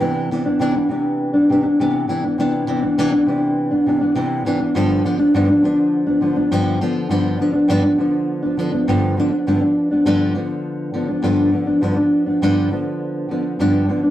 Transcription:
X:1
M:4/4
L:1/16
Q:1/4=102
K:Gmix
V:1 name="Nylon-string guitar"
[C,E,B,D]2 [C,E,B,D] [E,B,D] [C,E,B,D] [E,B,D] [C,E,B,D]3 [E,B,D] [C,E,B,D] [E,B,D] [C,E,B,D]2 [C,E,B,D] [E,B,D] | [C,E,B,D]2 [C,E,B,D] [E,B,D] [C,E,B,D] [E,B,D] [C,E,B,D]3 [E,B,D] [C,E,B,D] [E,B,D] [C,E,B,D]2 [C,E,B,D] [E,B,D] | [G,,D,F,B,D]2 [D,F,B,D] [F,B,D] [G,,D,F,B,D] [F,B,D] [D,F,B,D]3 [F,B,D] [D,F,B,D] [F,B,D] [G,,D,F,B,D]2 [D,F,B,D]2 | [G,,D,F,B,D]2 [D,F,B,D] [F,B,D] [G,,D,F,B,D] [F,B,D] [D,F,B,D]3 [F,B,D] [D,F,B,D] [F,B,D] [G,,D,F,B,D]2 [D,F,B,D] [F,B,D] |
[G,,D,F,B,D] [F,B,D]2 [F,B,D] [G,,D,F,B,D]2 [D,F,B,D]4 [D,F,B,D] [F,B,D] [G,,D,F,B,D]2 [D,F,B,D] [F,B,D] | [G,,D,F,B,D] [F,B,D]2 [F,B,D] [G,,D,F,B,D]2 [D,F,B,D]4 [D,F,B,D]2 [G,,D,F,B,D]2 [D,F,B,D] [F,B,D] |]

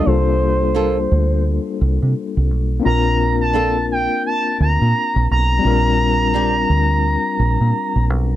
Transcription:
X:1
M:4/4
L:1/16
Q:"Swing 16ths" 1/4=86
K:Bb
V:1 name="Analog synth lead"
c8 z8 | b3 a3 g2 a2 b4 b2- | b12- b2 z2 |]
V:2 name="Nylon-string guitar"
z4 [B,FA] z8 z3 | z4 [DFA] z8 z3 | z4 [CDG] z8 z3 |]
V:3 name="Tine electric piano"
[G,B,DFA]16 | [B,CDFB]16 | [G,CDFB]16 |]
V:4 name="Fingered electric bass" clef=bass
C,,6 D,,3 z C,, C, z C,, _C,,2 | B,,,6- B,,, z3 D,, B,, z B,,, _C,,2 | B,,,6 D,,3 z B,,, B,, z B,,, _C,,2 |]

